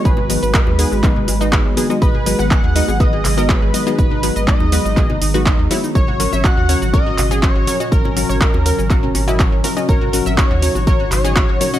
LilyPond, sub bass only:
\new Staff \with { instrumentName = "Sub bass" } { \clef bass \time 4/4 \key gis \minor \tempo 4 = 122 gis,,8. gis,,16 r16 dis,16 r16 gis,,8. gis,,8. gis,,16 r8 | gis,,8. gis,,16 r16 dis,16 r16 gis,,8. gis,,8. gis,,16 r8 | gis,,8. gis,,16 r16 dis,16 r16 gis,,8. gis,,8. dis,16 r8 | gis,,8. gis,,16 r16 dis,16 r16 gis,,8. gis,,8. gis,,16 r8 |
gis,,8. gis,,16 r16 dis,16 r16 gis,,8. gis,,8. gis,,16 r8 | gis,,8. gis,,16 r16 dis,16 r16 gis,,8. gis,,8. gis,,16 r8 | }